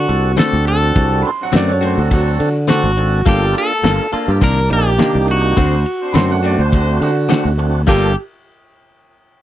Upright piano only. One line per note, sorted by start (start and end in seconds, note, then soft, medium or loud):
1.22 1.26 B5 medium
1.27 1.40 C6 medium
1.43 1.54 F#5 medium
1.56 1.69 D5 medium
1.72 1.83 C#5 medium
1.85 1.98 C5 medium
2.00 2.11 F#4 medium
2.13 2.55 F#4 medium
6.12 6.16 B5 medium
6.17 6.30 C6 medium
6.32 6.43 F#5 medium
6.45 6.59 D5 medium
6.60 6.72 C5 medium
6.74 7.01 F#4 medium
7.03 7.58 F#4 medium
7.88 8.14 G4 medium